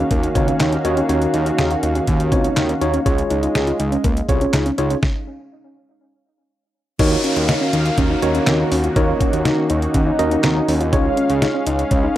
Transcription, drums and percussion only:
0.11 kick loud
0.11 closed hi-hat medium
0.23 closed hi-hat soft
0.35 kick medium
0.35 closed hi-hat medium
0.48 closed hi-hat medium
0.60 snare loud
0.60 clap loud
0.60 closed hi-hat medium
0.73 closed hi-hat medium
0.85 closed hi-hat medium
0.97 closed hi-hat soft
1.09 closed hi-hat medium
1.22 closed hi-hat medium
1.34 closed hi-hat medium
1.46 closed hi-hat medium
1.58 snare loud
1.58 closed hi-hat medium
1.71 closed hi-hat soft
1.83 closed hi-hat medium
1.95 closed hi-hat soft
2.07 kick loud
2.07 closed hi-hat medium
2.20 closed hi-hat medium
2.32 kick medium
2.32 closed hi-hat medium
2.44 closed hi-hat medium
2.57 snare loud
2.57 clap loud
2.57 closed hi-hat medium
2.69 closed hi-hat medium
2.82 closed hi-hat medium
2.94 closed hi-hat medium
3.06 kick loud
3.06 closed hi-hat medium
3.18 closed hi-hat medium
3.30 closed hi-hat medium
3.43 closed hi-hat medium
3.55 snare loud
3.55 closed hi-hat medium
3.67 closed hi-hat soft
3.80 closed hi-hat medium
3.92 closed hi-hat soft
4.04 kick loud
4.04 closed hi-hat medium
4.17 closed hi-hat medium
4.29 kick medium
4.29 closed hi-hat medium
4.41 closed hi-hat medium
4.53 snare loud
4.53 clap loud
4.53 closed hi-hat medium
4.66 closed hi-hat medium
4.78 closed hi-hat medium
4.90 closed hi-hat medium
5.03 kick loud
5.03 snare medium
6.99 kick loud
6.99 closed hi-hat medium
6.99 crash loud
7.24 closed hi-hat medium
7.36 closed hi-hat medium
7.49 snare loud
7.49 closed hi-hat medium
7.73 closed hi-hat medium
7.86 closed hi-hat soft
7.98 kick loud
7.98 closed hi-hat medium
8.22 closed hi-hat medium
8.35 closed hi-hat medium
8.47 snare loud
8.47 clap loud
8.47 closed hi-hat medium
8.72 open hi-hat medium
8.84 closed hi-hat medium
8.96 kick loud
8.96 closed hi-hat medium
9.21 kick loud
9.21 closed hi-hat medium
9.33 closed hi-hat medium
9.45 snare loud
9.45 closed hi-hat medium
9.70 closed hi-hat medium
9.82 closed hi-hat soft
9.94 kick loud
9.94 closed hi-hat medium
10.19 closed hi-hat medium
10.31 closed hi-hat medium
10.43 snare loud
10.43 clap loud
10.43 closed hi-hat medium
10.69 open hi-hat medium
10.81 closed hi-hat medium
10.93 kick loud
10.93 closed hi-hat medium
11.17 closed hi-hat medium
11.30 closed hi-hat medium
11.42 snare loud
11.42 closed hi-hat medium
11.67 closed hi-hat medium
11.79 closed hi-hat soft
11.91 kick loud
11.91 closed hi-hat medium

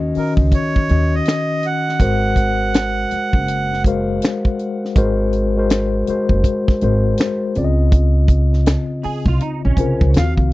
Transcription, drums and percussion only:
0.15 open hi-hat soft
0.37 kick medium
0.52 kick medium
0.52 closed hi-hat medium
0.76 kick medium
0.89 closed hi-hat medium
1.25 finger snap medium
1.25 snare medium
1.25 closed hi-hat medium
1.63 closed hi-hat medium
1.89 snare soft
2.00 kick medium
2.00 closed hi-hat medium
2.36 kick medium
2.36 closed hi-hat medium
2.74 finger snap medium
2.74 snare loud
2.74 closed hi-hat medium
3.11 closed hi-hat medium
3.33 kick medium
3.48 closed hi-hat medium
3.73 snare soft
3.84 kick medium
3.84 closed hi-hat medium
4.22 finger snap medium
4.22 snare medium
4.22 closed hi-hat medium
4.45 kick medium
4.59 closed hi-hat medium
4.85 snare soft
4.96 kick medium
4.96 closed hi-hat medium
5.33 closed hi-hat medium
5.70 finger snap medium
5.70 snare loud
5.70 closed hi-hat medium
6.07 closed hi-hat medium
6.29 kick medium
6.44 kick medium
6.44 closed hi-hat medium
6.68 kick medium
6.68 snare soft
6.81 closed hi-hat medium
7.18 finger snap medium
7.18 snare medium
7.18 closed hi-hat medium
7.55 closed hi-hat medium
7.92 kick loud
7.92 closed hi-hat medium
8.28 kick medium
8.28 closed hi-hat medium
8.53 snare soft
8.66 finger snap medium
8.66 snare loud
8.66 closed hi-hat medium
9.03 open hi-hat soft
9.26 kick medium
9.41 closed hi-hat medium
9.77 kick medium
9.77 closed hi-hat medium
10.01 kick medium
10.14 finger snap medium
10.14 snare loud
10.14 closed hi-hat medium
10.38 kick medium

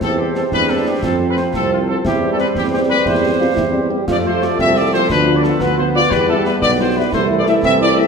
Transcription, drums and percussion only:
0.01 concert bass drum medium
0.01 snare medium
0.01 crash soft
0.35 snare medium
0.52 concert bass drum medium
0.52 snare medium
1.03 concert bass drum medium
1.03 snare medium
1.37 snare medium
1.54 concert bass drum medium
1.54 snare medium
2.05 concert bass drum medium
2.05 snare medium
2.39 snare medium
2.55 concert bass drum medium
2.55 snare medium
3.06 concert bass drum medium
3.06 snare medium
3.57 concert bass drum medium
3.57 snare medium
4.08 concert bass drum medium
4.08 snare medium
4.08 crash soft
4.42 snare medium
4.59 concert bass drum medium
4.59 snare medium
5.10 concert bass drum medium
5.10 snare medium
5.44 snare medium
5.61 concert bass drum medium
5.61 snare medium
6.11 concert bass drum medium
6.11 snare medium
6.45 snare medium
6.62 concert bass drum medium
6.62 snare medium
7.13 concert bass drum medium
7.13 snare medium
7.46 snare medium
7.63 concert bass drum medium
7.63 snare medium

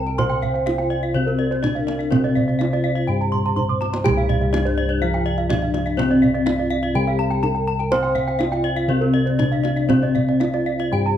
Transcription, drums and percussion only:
0.07 kendang slap soft
0.19 kendang high soft
0.19 kendang low soft
0.31 kendang slap soft
0.43 kendang low soft
0.56 kendang slap soft
0.67 kendang high soft
0.79 kendang slap soft
1.28 kendang slap soft
1.52 kendang slap soft
1.64 kendang high soft
1.64 kendang low soft
1.76 kendang slap soft
1.88 kendang high soft
2.01 kendang slap soft
2.12 kendang high soft
2.12 kendang low soft
2.25 kendang slap soft
2.37 kendang low soft
2.49 kendang slap soft
2.61 kendang high soft
2.73 kendang slap soft
2.98 kendang slap soft
3.21 kendang slap soft
3.34 kendang low soft
3.46 kendang slap soft
3.57 kendang low soft
3.70 kendang low soft
3.82 kendang high soft
3.94 kendang high soft
4.06 kendang high soft
4.06 kendang low soft
4.18 kendang slap soft
4.30 kendang low soft
4.42 kendang slap soft
4.54 kendang high soft
4.66 kendang slap soft
5.14 kendang slap soft
5.38 kendang slap soft
5.50 kendang high soft
5.50 kendang low soft
5.62 kendang slap soft
5.74 kendang high soft
5.87 kendang slap soft
5.99 kendang high soft
5.99 kendang low soft
6.11 kendang slap soft
6.23 kendang low soft
6.35 kendang slap soft
6.47 kendang high soft
7.07 kendang slap soft
7.31 kendang slap soft
7.43 kendang low soft
7.56 kendang slap soft
7.80 kendang slap soft
7.92 kendang high soft
7.92 kendang low soft
8.04 kendang slap soft
8.16 kendang low soft
8.28 kendang slap soft
8.40 kendang high soft
8.53 kendang slap soft
9.02 kendang slap soft
9.27 kendang slap soft
9.39 kendang high soft
9.39 kendang low soft
9.52 kendang slap soft
9.65 kendang high soft
9.77 kendang slap soft
9.90 kendang high soft
9.90 kendang low medium
10.02 kendang slap soft
10.16 kendang low soft
10.28 kendang slap soft
10.41 kendang high soft
10.54 kendang slap soft
10.79 kendang slap soft
11.07 kendang slap soft

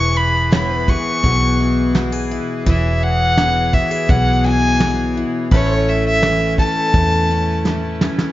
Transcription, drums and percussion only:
0.52 snare loud
0.88 kick medium
1.24 kick loud
1.95 snare loud
1.95 open hi-hat soft
2.67 kick loud
3.38 snare loud
3.73 kick medium
4.09 kick loud
4.80 snare loud
5.51 kick loud
5.51 open hi-hat medium
6.23 snare loud
6.58 kick medium
6.94 kick loud
6.94 open hi-hat medium
7.65 snare medium
8.01 snare loud
8.19 snare medium

